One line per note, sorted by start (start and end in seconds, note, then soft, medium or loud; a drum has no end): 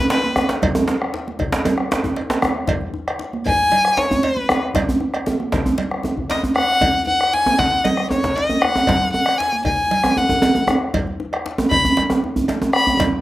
0.00 0.10 B4 medium
0.10 0.47 B4 medium
0.10 cowbell soft
0.10 djembe slap medium
0.24 high conga medium
0.36 bombo rim medium
0.36 djembe tone medium
0.49 bombo rim soft
0.49 djembe slap medium
0.62 bombo low medium
0.62 cowbell medium
0.62 djembe slap medium
0.62 low conga medium
0.62 djembe bass medium
0.75 djembe tone medium
0.75 high conga soft
0.88 djembe slap medium
0.88 djembe slap soft
0.88 djembe tone medium
1.02 bombo rim medium
1.14 bombo rim soft
1.14 djembe slap medium
1.14 high conga soft
1.27 bombo rim soft
1.27 high conga medium
1.39 bombo low medium
1.39 cowbell medium
1.39 djembe tone medium
1.39 djembe bass medium
1.52 djembe slap medium
1.65 cowbell soft
1.65 djembe slap medium
1.65 djembe tone medium
1.65 low conga medium
1.78 bombo rim medium
1.91 djembe slap medium
1.91 djembe tone medium
2.04 bombo low medium
2.04 djembe tone medium
2.04 djembe bass medium
2.16 cowbell soft
2.16 djembe slap medium
2.30 djembe slap medium
2.30 high conga medium
2.42 bombo rim medium
2.42 djembe tone medium
2.55 bombo rim soft
2.67 bombo low loud
2.67 cowbell medium
2.67 djembe slap medium
2.67 djembe bass medium
2.67 low conga medium
2.81 djembe slap soft
2.81 high conga soft
2.94 djembe slap soft
2.94 djembe tone medium
3.08 bombo rim medium
3.08 cowbell soft
3.19 bombo rim soft
3.19 djembe slap medium
3.19 high conga soft
3.33 bombo rim soft
3.33 high conga medium
3.46 3.99 G#5 medium
3.46 bombo low medium
3.46 cowbell medium
3.46 djembe tone medium
3.46 djembe bass medium
3.72 cowbell soft
3.72 djembe slap medium
3.72 low conga medium
3.85 bombo rim medium
3.97 4.25 C#5 medium
3.97 djembe slap medium
3.97 djembe tone medium
4.11 bombo low medium
4.11 djembe bass medium
4.23 4.62 B4 medium
4.23 cowbell medium
4.23 djembe slap medium
4.37 high conga medium
4.49 bombo rim loud
4.49 djembe tone medium
4.62 bombo rim soft
4.74 bombo low medium
4.74 cowbell medium
4.74 djembe slap medium
4.74 djembe bass medium
4.74 low conga medium
4.89 djembe bass medium
5.00 bombo rim soft
5.00 djembe slap soft
5.00 djembe tone medium
5.14 bombo rim medium
5.14 cowbell medium
5.14 high conga soft
5.26 djembe slap medium
5.26 djembe tone medium
5.40 bombo rim soft
5.40 high conga medium
5.52 bombo low medium
5.52 cowbell soft
5.52 djembe slap medium
5.52 djembe tone medium
5.52 djembe bass medium
5.66 djembe slap soft
5.66 high conga soft
5.66 djembe bass medium
5.78 cowbell soft
5.78 djembe slap medium
5.78 low conga medium
5.91 bombo rim medium
5.91 high conga soft
6.03 djembe tone medium
6.17 bombo low medium
6.17 djembe bass soft
6.30 6.42 D#5 medium
6.30 cowbell soft
6.30 djembe slap medium
6.43 djembe slap soft
6.43 djembe bass medium
6.56 7.04 F#5 medium
6.56 bombo rim medium
6.56 high conga soft
6.56 djembe tone medium
6.81 bombo low medium
6.81 cowbell medium
6.81 djembe slap medium
6.81 djembe tone medium
6.81 low conga medium
6.81 djembe bass medium
6.95 djembe slap soft
6.95 high conga soft
7.07 7.35 F#5 medium
7.07 djembe slap soft
7.07 djembe tone medium
7.21 bombo rim medium
7.33 7.61 G#5 medium
7.33 bombo rim soft
7.33 djembe slap medium
7.33 high conga soft
7.46 bombo rim soft
7.46 djembe tone medium
7.46 high conga medium
7.58 7.86 F#5 medium
7.58 bombo low medium
7.58 cowbell soft
7.58 djembe slap medium
7.58 djembe bass medium
7.85 8.10 D#5 medium
7.85 cowbell soft
7.85 djembe slap medium
7.85 djembe tone medium
7.85 low conga medium
7.97 bombo rim medium
8.11 8.37 C#5 medium
8.11 djembe tone medium
8.23 bombo low medium
8.23 djembe slap medium
8.23 djembe bass medium
8.36 8.63 D#5 medium
8.36 cowbell soft
8.36 djembe slap medium
8.49 djembe tone medium
8.49 high conga medium
8.62 9.12 F#5 medium
8.62 bombo rim loud
8.62 djembe tone medium
8.75 bombo rim soft
8.75 djembe tone medium
8.87 bombo low medium
8.87 cowbell medium
8.87 djembe slap medium
8.87 low conga medium
8.87 djembe bass medium
9.01 djembe slap soft
9.01 high conga soft
9.13 9.40 F#5 medium
9.13 djembe slap soft
9.13 djembe tone medium
9.26 bombo rim medium
9.26 cowbell soft
9.38 9.65 G#5 medium
9.38 bombo rim soft
9.38 djembe slap medium
9.38 high conga soft
9.52 bombo rim soft
9.52 high conga medium
9.65 10.19 G#5 medium
9.65 bombo low medium
9.65 cowbell soft
9.65 djembe tone medium
9.65 djembe bass medium
9.91 cowbell soft
9.91 djembe slap medium
9.91 low conga medium
10.04 bombo rim medium
10.04 djembe tone loud
10.17 10.68 F#5 medium
10.17 djembe tone medium
10.29 bombo low medium
10.29 djembe tone medium
10.29 djembe bass medium
10.42 cowbell soft
10.42 djembe slap medium
10.42 djembe tone loud
10.55 djembe tone medium
10.55 high conga medium
10.67 bombo rim medium
10.67 djembe tone medium
10.69 djembe tone medium
10.81 bombo rim soft
10.94 bombo low medium
10.94 cowbell medium
10.94 djembe slap medium
10.94 low conga medium
10.94 djembe bass medium
11.07 djembe slap soft
11.07 high conga soft
11.20 djembe slap soft
11.20 djembe tone medium
11.33 bombo rim medium
11.33 cowbell soft
11.46 bombo rim soft
11.46 djembe slap medium
11.46 high conga soft
11.58 bombo rim soft
11.58 djembe tone loud
11.58 high conga soft
11.71 11.95 B5 medium
11.71 bombo low medium
11.71 cowbell medium
11.71 djembe tone medium
11.71 djembe bass medium
11.85 djembe bass medium
11.97 cowbell soft
11.97 djembe slap medium
11.97 djembe tone medium
11.97 low conga medium
12.10 bombo rim medium
12.10 djembe tone medium
12.24 djembe tone medium
12.36 bombo low medium
12.36 djembe bass medium
12.48 cowbell soft
12.48 djembe slap medium
12.48 djembe tone medium
12.62 djembe tone medium
12.62 high conga soft
12.73 12.98 B5 medium
12.73 bombo rim medium
12.87 bombo rim soft
12.87 djembe bass medium
12.99 bombo low medium
12.99 cowbell medium
12.99 djembe slap medium
12.99 djembe tone medium
12.99 low conga medium
12.99 djembe bass medium